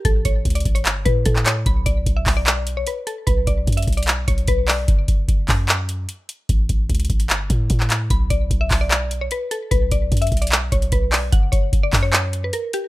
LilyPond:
<<
  \new Staff \with { instrumentName = "Synth pluck" } { \time 4/4 \key b \minor \tempo 4 = 149 a'8 cis''8. d''8 cis''16 r8 b'8 a'8 cis''8 | b''8 d''8. e''8 d''16 d''8. cis''16 b'8 a'8 | b'8 d''8. e''8 d''16 r8 cis''8 b'8 d''8 | r1 |
r1 | b''8 d''8. e''8 d''16 d''8. cis''16 b'8 a'8 | b'8 d''8. e''8 d''16 r8 cis''8 b'8 d''8 | fis''8 cis''8. d''8 cis''16 cis''8. b'16 ais'8 g'8 | }
  \new Staff \with { instrumentName = "808-style bass" } { \clef bass \time 4/4 \key b \minor a,,8 a,,8 cis,8 a,,8 g,,8 a,8 a,4 | b,,8 b,,8 b,,8 b,,4. r4 | b,,8 b,,8 fis,8 b,,4 b,,8 b,,4 | fis,,8 fis,,8 fis,,8 fis,4. r4 |
a,,8 a,,8 cis,8 a,,8 g,,8 a,8 a,4 | b,,8 b,,8 b,,8 b,,4. r4 | b,,8 b,,8 fis,8 b,,4 b,,8 b,,4 | fis,,8 fis,,8 fis,,8 fis,4. r4 | }
  \new DrumStaff \with { instrumentName = "Drums" } \drummode { \time 4/4 <hh bd>8 <hh bd>8 <hh bd>32 hh32 hh32 hh32 <hh bd>16 hh16 <hc hh>8 <hh bd>8 <hh bd>16 hc16 <hc hh>8 | <hh bd>8 <hh bd>8 <hh bd>8 <hc hho bd>8 <hc hh>8 hh8 hh8 hh8 | <hh bd>8 <hh bd>8 <hh bd>32 hh32 hh32 hh32 <hh bd>32 hh32 hh32 hh32 <hc hh>8 <hh bd>16 hh16 <hh bd>8 <hc hho>8 | <hh bd>8 <hh bd>8 <hh bd>8 <hc hho bd>8 <hc hh>8 hh8 hh8 hh8 |
<hh bd>8 <hh bd>8 <hh bd>32 hh32 hh32 hh32 <hh bd>16 hh16 <hc hh>8 <hh bd>8 <hh bd>16 hc16 <hc hh>8 | <hh bd>8 <hh bd>8 <hh bd>8 <hc hho bd>8 <hc hh>8 hh8 hh8 hh8 | <hh bd>8 <hh bd>8 <hh bd>32 hh32 hh32 hh32 <hh bd>32 hh32 hh32 hh32 <hc hh>8 <hh bd>16 hh16 <hh bd>8 <hc hho>8 | <hh bd>8 <hh bd>8 <hh bd>8 <hc hho bd>8 <hc hh>8 hh8 hh8 hh8 | }
>>